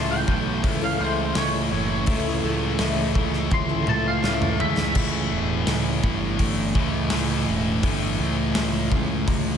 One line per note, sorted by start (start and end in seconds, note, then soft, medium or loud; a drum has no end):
0.00 0.24 C#2 medium
0.00 0.27 A2 loud
0.00 0.28 E3 loud
0.00 0.15 A3 medium
0.00 0.29 A3 loud
0.00 0.15 C#4 medium
0.00 0.15 E4 medium
0.00 0.16 A4 loud
0.00 0.10 A5 medium
0.11 0.80 G5 loud
0.28 0.60 B1 medium
0.28 0.62 A2 medium
0.28 0.63 E3 medium
0.28 0.63 A3 medium
0.28 kick medium
0.63 0.96 C#2 medium
0.63 0.98 A2 medium
0.63 0.99 E3 loud
0.63 1.00 A3 medium
0.63 0.81 A3 medium
0.63 0.80 C#4 medium
0.63 0.81 E4 medium
0.63 0.80 A4 medium
0.63 kick loud
0.63 open hi-hat medium
0.81 0.98 A3 medium
0.81 0.99 C#4 medium
0.81 0.99 E4 medium
0.81 0.99 A4 medium
0.81 1.00 F5 medium
0.99 1.32 C#2 medium
0.99 1.34 A2 medium
0.99 1.35 E3 medium
0.99 1.23 A3 medium
0.99 1.36 A3 loud
0.99 1.23 C#4 medium
0.99 1.23 E4 medium
0.99 1.24 A4 medium
0.99 1.35 C5 medium
1.34 1.68 C#2 medium
1.34 1.69 A2 medium
1.34 1.71 E3 medium
1.34 1.58 A3 medium
1.34 1.71 A3 medium
1.34 1.59 C#4 medium
1.34 1.59 E4 medium
1.34 1.59 A4 medium
1.34 2.07 C#5 loud
1.34 snare loud
1.34 open hi-hat medium
1.71 2.04 F#1 medium
1.71 2.06 A2 medium
1.71 2.06 E3 medium
1.71 2.07 A3 medium
2.06 2.40 C#2 medium
2.06 2.41 A2 loud
2.06 2.42 E3 loud
2.06 2.25 A3 loud
2.06 2.43 A3 loud
2.06 2.25 C#4 medium
2.06 2.25 E4 medium
2.06 2.24 A4 loud
2.06 kick loud
2.06 open hi-hat medium
2.25 2.49 A3 medium
2.25 2.49 C#4 medium
2.25 2.49 E4 medium
2.25 2.49 A4 medium
2.43 2.76 C#2 medium
2.43 2.77 A2 medium
2.43 2.78 E3 medium
2.43 2.78 A3 medium
2.79 3.12 C#2 medium
2.79 3.14 A2 loud
2.79 3.15 E3 medium
2.79 3.03 A3 medium
2.79 3.15 A3 loud
2.79 3.03 C#4 medium
2.79 3.03 E4 medium
2.79 3.03 A4 loud
2.79 snare loud
2.79 open hi-hat medium
3.15 3.48 C#2 medium
3.15 3.50 A2 medium
3.15 3.50 E3 medium
3.15 3.50 A3 medium
3.15 kick medium
3.33 snare soft
3.51 3.84 C#2 loud
3.51 3.86 A2 loud
3.51 3.86 E3 medium
3.51 3.69 A3 medium
3.51 3.87 A3 loud
3.51 3.68 C#4 medium
3.51 3.68 E4 medium
3.51 3.68 A4 medium
3.51 3.88 C6 medium
3.51 kick loud
3.51 high tom medium
3.69 3.86 A3 medium
3.69 3.86 C#4 medium
3.69 3.86 E4 medium
3.69 3.87 A4 loud
3.87 4.20 C#2 medium
3.87 4.22 A2 medium
3.87 4.23 E3 medium
3.87 4.11 A3 medium
3.87 4.23 A3 medium
3.87 4.11 C#4 medium
3.87 4.11 E4 medium
3.87 4.11 A4 medium
3.87 4.06 A5 medium
3.87 mid tom medium
4.08 4.59 F5 medium
4.22 4.56 C#2 loud
4.22 4.58 A2 medium
4.22 4.58 E3 loud
4.22 4.46 A3 medium
4.22 4.58 A3 loud
4.22 4.47 C#4 loud
4.22 4.47 E4 medium
4.22 4.47 A4 medium
4.22 snare medium
4.42 mid tom medium
4.59 4.92 C#2 medium
4.59 4.93 A2 medium
4.59 4.93 E3 medium
4.59 4.93 A3 medium
4.59 4.95 E5 loud
4.59 floor tom medium
4.77 snare medium
4.94 5.29 C#2 medium
4.94 6.73 A2 medium
4.94 6.76 E3 medium
4.94 6.75 A3 loud
4.94 kick loud
4.94 crash loud
5.31 5.64 E1 medium
5.67 6.00 C#2 medium
5.67 snare loud
5.67 open hi-hat medium
6.03 6.37 G1 medium
6.03 7.82 A2 medium
6.03 7.84 E3 medium
6.03 7.85 A3 medium
6.03 kick medium
6.39 6.73 G1 medium
6.39 kick medium
6.39 open hi-hat medium
6.75 7.09 C#2 medium
6.75 7.09 A2 medium
6.75 7.12 E3 medium
6.75 7.13 A3 medium
6.75 kick medium
7.10 7.45 C#2 medium
7.10 7.81 A2 medium
7.10 7.84 E3 medium
7.10 7.85 A3 medium
7.10 snare loud
7.10 open hi-hat medium
7.48 7.81 E1 medium
7.83 8.17 G1 medium
7.83 9.57 A2 loud
7.83 9.57 E3 medium
7.83 9.57 A3 loud
7.83 kick loud
7.83 open hi-hat medium
8.19 8.52 C#2 medium
8.55 8.89 C#2 medium
8.55 snare loud
8.55 open hi-hat medium
8.92 9.25 C#2 medium
8.92 9.57 A2 medium
8.92 9.57 E3 medium
8.92 9.57 A3 medium
8.92 kick medium
9.28 9.57 C#2 medium
9.28 kick medium
9.28 open hi-hat medium